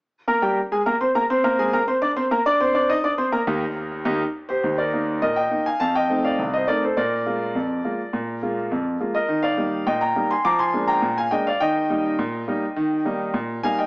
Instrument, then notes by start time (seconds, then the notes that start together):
grand piano
0.28 A#3 A#4 A#5
0.42 G3 G4 G5
0.72 G#3 G#4 G#5
0.86 A#3 A#4 A#5
1.01 C4 C5 C6
1.15 A#3 A#4 A#5
1.30 C4 C5 C6
1.44 A#3 A#4 A#5
1.59 G#3 G#4 G#5
1.73 A#3 A#4 A#5
1.88 C4 C5 C6
2.02 D4 D5 D6
2.16 C4 C5 C6
2.31 A#3 A#4 A#5
2.46 D4 D5 D6
2.60 C4 C5 C6
2.75 D4 D5 D6
2.90 D#4 D#5 D#6
3.04 D4 D5 D6
3.18 C4 C5 C6
3.32 A#3 A#4 A#5
3.47 D#2 A#3 D#4 G4
4.05 D#2 A#3 D#4 G4
4.49 G4 C5
4.64 D#2
4.78 A#4 D5
4.93 A#3 D#4
5.22 A#2 A#4 D#5
5.36 D#5 G5
5.51 A#3 D#4
5.66 F5 G#5
5.80 F2 F5 A5
5.95 D#5 G5
6.10 A3 C4 D#4
6.24 D5 F5
6.39 C2
6.54 C5 D#5
6.68 A3 C4 D#4 A#4 D5
6.83 A4 C5
6.97 A#2 A#4 D5
7.26 G#3 A#3 F4
7.55 F2
7.84 G#3 A#3 F4
8.13 A#2
8.42 G#3 A#3 F4
8.71 F2
9.00 G#3 A#3 F4
9.15 A#4 D#5
9.29 D#3
9.43 D5 F5
9.57 G3 A#3 D#4
9.87 A#2 D#5 G5
10.01 G5 A#5
10.16 G3 A#3 D#4
10.31 G#5 C6
10.45 F3 A#5 D6
10.59 G#5 C6
10.74 G#3 A#3 D4
10.88 G5 A#5
11.02 A#2
11.18 F5 G#5
11.31 G#3 A#3 D4 D#5 G5
11.47 D5 F5
11.60 D#3 D#5 G5
11.90 G3 A#3 D#4
12.19 A#2
12.48 G3 A#3 D#4
12.76 D#3
13.05 G3 A#3 D#4
13.34 A#2
13.63 G3 A#3 D#4 F5 G#5
13.79 D#5 G5